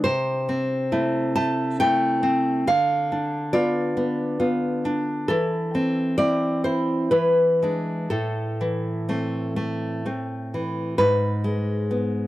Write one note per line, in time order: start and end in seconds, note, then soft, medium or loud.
0.04 2.63 C3 soft
0.04 1.32 C5 medium
0.49 1.80 C4 soft
0.92 1.35 A3 soft
0.92 1.79 E4 soft
1.36 1.79 A3 soft
1.36 1.78 A5 medium
1.80 2.64 A3 soft
1.80 2.64 E4 soft
1.80 2.64 G5 medium
2.23 2.67 C4 soft
2.67 5.26 D3 medium
2.67 3.51 F5 medium
3.12 4.42 D4 soft
3.53 3.96 B3 soft
3.53 4.38 F4 soft
3.53 4.81 D5 medium
3.97 4.38 B3 soft
4.40 5.25 B3 soft
4.40 5.25 F4 soft
4.85 5.30 D4 soft
5.28 7.09 E3 soft
5.28 6.15 A4 medium
5.75 6.18 C4 soft
6.18 7.09 C4 soft
6.18 6.64 E4 soft
6.18 6.63 D5 medium
6.64 7.13 E4 soft
6.64 7.10 C5 medium
7.11 8.08 E3 soft
7.11 8.06 B4 medium
7.63 8.08 G#3 soft
7.63 8.08 D4 soft
8.10 10.96 A2 soft
8.10 10.00 A4 medium
8.61 10.05 E3 soft
9.09 9.55 A3 soft
9.09 10.05 C4 soft
9.56 10.04 A3 soft
10.06 10.97 A3 soft
10.06 10.97 C4 soft
10.54 11.01 E3 soft
10.98 12.27 G#2 medium
10.98 12.27 B4 medium
11.44 12.27 G#3 soft
11.91 12.27 B3 soft